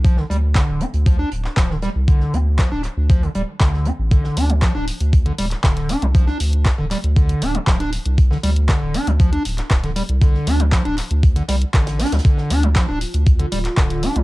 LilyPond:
<<
  \new Staff \with { instrumentName = "Analog synth pad" } { \time 4/4 \key d \minor \tempo 4 = 118 r1 | r1 | r1 | r1 |
r1 | r1 | f'1 | }
  \new Staff \with { instrumentName = "Acid bass" } { \clef bass \time 4/4 \key d \minor f16 d16 g16 r16 d8 d'16 r16 f16 d'16 r8 f16 d16 g16 r16 | d8 d'16 r16 f16 d'16 r8 f16 d16 g16 r16 d8 d'16 r16 | d8 d'16 f16 f16 d'16 r8. d16 g16 r16 d8 d'16 f16 | f16 d'16 r8. d16 g16 r16 d8 d'16 f16 f16 d'16 r8 |
r16 d16 g16 r16 d8 d'16 f16 f16 d'16 r8. d16 g16 r16 | d8 d'16 f16 f16 d'16 r8. d16 g16 r16 d8 d'16 f16 | d8 d'16 f16 f16 d'16 r8. d16 g16 r16 d8 d'16 f16 | }
  \new Staff \with { instrumentName = "Sub bass" } { \clef bass \time 4/4 \key d \minor c,16 r16 d,8 r16 d,,16 r16 d,8 r16 d,,16 r16 d,,8 r16 c,16~ | c,16 r16 d,8 r16 d,,16 r16 d,8 r16 d,,16 r16 d,8 r16 a,,16~ | a,,16 r16 d,8 r16 d,,16 r16 d,8 r16 d,,16 r16 d,,8 r16 c,16~ | c,16 r16 d,8 r16 d,,16 r16 d,8 r16 d,,16 r16 d,,8 r16 c,16~ |
c,16 r16 d,8 r16 d,,16 r16 d,8 r16 d,,16 r16 d,,8 r16 c,16~ | c,16 r16 d,8 r16 d,,16 r16 d,8 r16 c,16 r16 a,,8 r16 d,16 | r8 d,8 r16 d,,16 r16 d,8 r16 d,,16 r16 d,,8 r16 c,16 | }
  \new DrumStaff \with { instrumentName = "Drums" } \drummode { \time 4/4 <hh bd>16 sn16 hh8 <hc hh bd sn>8 hh16 hh16 <hh bd>8 hh16 <hc sn>16 <hc hh bd sn>16 sn16 <hh sn>8 | <hh bd>16 sn16 hh8 <hc hh bd sn>8 <hc hh>8 <hh bd>16 hh16 hh8 <hc hh bd sn>16 sn16 hh8 | <hh bd>16 sn16 <hh hho>16 hh16 <hc hh bd sn>8 <hh hho>16 hh16 <hh bd>16 hh16 <hh hho>16 <hc hh sn>16 <hc hh bd sn>16 <hh sn>16 <hh hho sn>16 hh16 | <hh bd>16 sn16 <hh hho>16 hh16 <hc hh bd sn>8 <hc hh hho>16 hh16 <hh bd>16 hh16 <hh hho>16 hh16 <hc hh bd sn>16 <hh sn>16 <hh hho>16 hh16 |
<hh bd>16 sn16 <hh hho>16 hh16 <hc hh bd sn>8 <hh hho>16 hh16 <hh bd>16 hh16 <hh hho>16 <hc hh sn>16 <hc hh bd sn>16 <hh sn>16 <hh hho sn>16 hh16 | <hh bd>16 sn16 <hh hho>16 hh16 <hc hh bd sn>16 hh16 <hc hh hho>16 hh16 <hh bd>16 hh16 <hh hho sn>16 hh16 <hc hh bd>16 <hh sn>16 <hh hho sn>32 <hh sn>32 <hh sn>32 <hh sn>32 | <hh bd>16 sn16 <hh hho>16 hh16 <hc hh bd sn>8 <hh hho>16 hh16 <hh bd>16 hh16 <hh hho>16 <hc hh sn>16 <hc hh bd sn>16 <hh sn>16 <hh hho sn>16 hh16 | }
>>